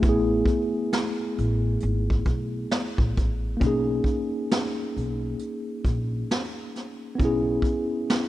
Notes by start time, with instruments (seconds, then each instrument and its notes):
0.00 upright bass A1, tine electric piano A3 B3, kick, closed hi-hat
0.06 tine electric piano E4 G#4
0.46 kick, closed hi-hat
0.92 snare, closed hi-hat
1.38 upright bass A1, closed hi-hat
1.80 upright bass G#1, closed hi-hat
2.10 kick
2.26 upright bass B1, kick, closed hi-hat
2.71 snare, closed hi-hat
2.98 upright bass A1, kick
3.17 upright bass A1, kick, closed hi-hat
3.57 tine electric piano A#3 C#4
3.61 upright bass B1, tine electric piano D#4, kick, closed hi-hat
3.67 tine electric piano G#4
4.04 kick, closed hi-hat
4.51 snare, closed hi-hat
4.97 upright bass B1, closed hi-hat
5.39 closed hi-hat
5.85 upright bass A#1, kick, closed hi-hat
6.31 snare, closed hi-hat
6.76 snare, closed hi-hat
7.15 tine electric piano B3 C#4
7.20 upright bass B1, tine electric piano E4, kick, closed hi-hat
7.25 tine electric piano G#4
7.62 kick, closed hi-hat
8.09 snare, closed hi-hat